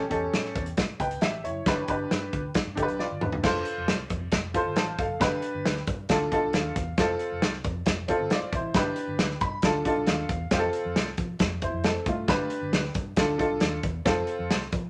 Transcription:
0.10 fingered electric bass E2, upright piano C#4 G4 A4, kick, closed hi-hat
0.33 fingered electric bass A2, snare, closed hi-hat
0.45 snare
0.55 fingered electric bass E2, kick, closed hi-hat
0.66 closed hi-hat
0.77 kick, snare, closed hi-hat
0.89 muted fingered electric bass stroke
1.00 fingered electric bass C#2, upright piano B4 G5, kick, closed hi-hat
1.11 closed hi-hat
1.21 fingered electric bass A1, upright piano G4 E5, snare, closed hi-hat
1.44 fingered electric bass F#1, upright piano E4 C#5, closed hi-hat
1.66 fingered electric bass G1, upright piano D4 G4 B4, kick, snare, closed hi-hat
1.88 fingered electric bass G1, upright piano D4 G4 B4, kick, closed hi-hat
2.11 fingered electric bass G2, snare, closed hi-hat
2.33 fingered electric bass D2, kick, closed hi-hat
2.55 kick, snare, closed hi-hat
2.66 fingered electric bass G2
2.75 fingered electric bass G1, upright piano D4 G4 A4, kick, closed hi-hat
2.82 upright piano B4
2.88 fingered electric bass B1, closed hi-hat
2.99 upright piano F4 D5, snare
3.11 fingered electric bass G1
3.21 fingered electric bass E1, upright piano D4 B4, mid tom
3.32 floor tom
3.43 fingered electric bass F1, upright piano F4 A4 C5, kick, snare, crash
3.65 closed hi-hat
3.78 fingered electric bass F1
3.88 fingered electric bass C2, snare, closed hi-hat
4.10 fingered electric bass F2, kick, closed hi-hat
4.32 fingered electric bass F1, kick, snare, closed hi-hat
4.54 upright piano F4 A4 C5, kick, closed hi-hat
4.66 fingered electric bass G1
4.76 fingered electric bass A1, upright piano C5 A5, snare, closed hi-hat
4.98 fingered electric bass F#1, upright piano A4 F5, kick, closed hi-hat
5.20 fingered electric bass G1, upright piano D4 G4 B4, kick, snare, closed hi-hat
5.42 closed hi-hat
5.54 fingered electric bass G1
5.65 fingered electric bass D2, snare, closed hi-hat
5.76 snare
5.87 fingered electric bass G2, kick, closed hi-hat
6.09 fingered electric bass D2, upright piano D4 F4 A4, kick, snare, closed hi-hat
6.31 upright piano D4 F4 A4 A5, kick, closed hi-hat
6.43 fingered electric bass C2
6.53 fingered electric bass D#2, upright piano F5, snare, closed hi-hat
6.76 fingered electric bass E2, kick, closed hi-hat
6.98 fingered electric bass F1, upright piano C4 F4 A4, kick, snare, closed hi-hat
7.19 closed hi-hat
7.32 fingered electric bass F1
7.42 fingered electric bass C2, snare, closed hi-hat
7.53 snare
7.64 fingered electric bass F2, kick, closed hi-hat
7.86 kick, snare, closed hi-hat
8.08 upright piano C4 F4 A4, kick, closed hi-hat
8.19 fingered electric bass G1
8.30 upright piano F4 D5, snare, closed hi-hat
8.41 muted fingered electric bass stroke
8.52 fingered electric bass A1, upright piano E4 C5, kick, closed hi-hat
8.74 fingered electric bass G1, upright piano D4 G4 B4, kick, snare, closed hi-hat
8.96 closed hi-hat
9.07 fingered electric bass G1
9.19 fingered electric bass D2, snare, closed hi-hat
9.30 snare
9.41 fingered electric bass G2, upright piano B5, kick, closed hi-hat
9.62 fingered electric bass D2, upright piano D4 F4 A4 A5, kick, snare, closed hi-hat
9.85 upright piano D4 F4 A4, kick, closed hi-hat
9.96 fingered electric bass C2
10.07 fingered electric bass D#2, upright piano F5, snare, closed hi-hat
10.29 fingered electric bass E2, kick, closed hi-hat
10.51 fingered electric bass F2, upright piano C4 F4 G4, kick, snare, closed hi-hat
10.59 upright piano A4
10.73 closed hi-hat
10.85 fingered electric bass F2
10.96 fingered electric bass C2, snare, closed hi-hat
11.06 snare
11.17 fingered electric bass F3, kick, closed hi-hat
11.39 fingered electric bass F2, kick, snare, closed hi-hat
11.62 upright piano E4 C5, kick, closed hi-hat
11.73 fingered electric bass F2
11.84 upright piano C4 A4, snare, closed hi-hat
12.06 fingered electric bass G2, upright piano A3 F4, kick, closed hi-hat
12.28 fingered electric bass G1, upright piano D4 G4 B4, kick, snare, closed hi-hat
12.50 closed hi-hat
12.61 fingered electric bass G1
12.72 fingered electric bass D2, snare, closed hi-hat
12.84 snare
12.94 fingered electric bass G2, kick, closed hi-hat
13.16 fingered electric bass D2, upright piano D4 F4 A4, kick, snare, closed hi-hat
13.38 upright piano D4 F4 A4, kick, closed hi-hat
13.51 fingered electric bass C2
13.60 fingered electric bass D#2, snare, closed hi-hat
13.83 fingered electric bass E2, kick, closed hi-hat
14.05 fingered electric bass F2, upright piano C4 F4 A4, kick, snare, closed hi-hat
14.27 closed hi-hat
14.39 fingered electric bass F2
14.50 fingered electric bass C2, snare, closed hi-hat
14.61 snare
14.72 fingered electric bass F3, kick, closed hi-hat

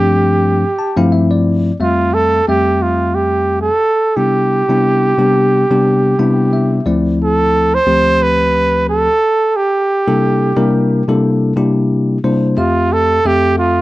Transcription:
Already playing: tine electric piano G2 F3 A3 C4 D4, trumpet G4
0.79 tine electric piano A5
0.97 tine electric piano G2 F3 A3 C4 E4 F5
1.12 tine electric piano E5
1.31 tine electric piano D5
1.80 tine electric piano F2 G3 A3 C4 E5, trumpet F4
2.14 trumpet A4
2.48 tine electric piano F2 G3 A3 C4 E5, trumpet G4
2.82 trumpet F4
3.15 trumpet G4
3.61 trumpet A4
4.16 tine electric piano C3 G3 B3 D4 E4, trumpet G4
4.69 tine electric piano C3 G3 B3 D4 E4
5.18 tine electric piano C3 G3 B3 D4 G4
5.71 tine electric piano C3 G3 B3 D4 G4
6.19 tine electric piano C3 G3 B3 D4 E4 G5
6.53 tine electric piano E5
6.86 tine electric piano D2 F3 A3 C4 E4 D5
7.24 trumpet A4
7.74 trumpet C5
7.86 tine electric piano D2 F3 A3 C4 G4
8.23 trumpet B4
8.89 trumpet A4
9.56 trumpet G4
10.08 tine electric piano C3 G3 A#3 D4 E4 A4
10.56 tine electric piano C3 G3 A#3 D4 E4 A#4
11.08 tine electric piano C3 G3 A#3 D4 E4 A4
11.56 tine electric piano C3 G3 A#3 D4 E4 G4
12.24 tine electric piano C3 G3 A#3 D4 E4 C5
12.57 tine electric piano F2 A3 C4 G4 E5, trumpet F4
12.93 trumpet A4
13.25 tine electric piano F2 A3 C4 A4 E5, trumpet G4
13.59 trumpet F4

